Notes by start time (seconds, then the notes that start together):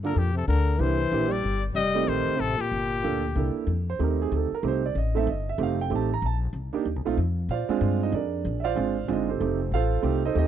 Already playing: G2
0.04 D3 A#3 D4 F4 A4 A#4
0.14 F2 A#2
0.18 G4
0.34 C3 A4
0.46 D2 D3 A#4
0.77 C2 E3 A#3 D4 E4 G4 C5
1.12 A#1 A#3 D4 E4 G4
1.29 G3 D5
1.43 G1
1.74 F1 G3 D#5
1.95 A3 C4 D#4 G4
2.06 A#1 D#3 C5
2.28 muted upright bass stroke
2.36 A1 C3 A4
2.57 A#2 G4, muted upright bass stroke
2.72 G1
3.03 D2 A#3 D4 F4 A4
3.36 C2 A#3 D4 E4 A4
3.56 muted upright bass stroke
3.67 F2
3.90 C5
3.99 D#2 A3 C4 D#4 G4
4.04 A#4
4.22 G#4
4.32 D2
4.36 A4
4.52 A#4, muted upright bass stroke
4.63 C2 A3 C4 D#4 G4
4.68 C5
4.86 D5
4.95 A1 D#5
5.15 A3 C4 D#4 A4 E5
5.27 G1 D#5
5.49 E5
5.58 F1 A3 C4 D#4 G4
5.63 F5
5.81 G5
5.90 A1 A3 C4 D#4 G4
5.96 A5
6.14 A#5
6.22 A#1 A5
6.53 C2
6.73 A#3 D4 D#4 G4, muted upright bass stroke
6.86 D#2
6.96 C2
7.05 A#1 A3 C4 D#4 F4
7.17 F2
7.49 A#2 F4 C5 D5 F5
7.69 G#3 C4 D4 F4, muted upright bass stroke
7.81 G2
8.03 D#4 D#5
8.12 F2 D4 G#4 A#4 D5
8.45 A#1
8.60 D5 E5
8.64 F4 C5 F5
8.75 G#1 G#3 C4 D4 F4
9.08 G1 G#3 C4 D4 F4
9.12 D#4 D#5
9.29 C4 G4 A4 C5
9.40 F1 A3 C4 D#4 G4
9.72 A1 F4 A4 C5 F5
10.02 C2 A3 C4 D#4 G4
10.25 D#4 A4 C5 D#5
10.35 D#2 A3 C4 D#4 G4 D#5
10.39 D#4 A4 C5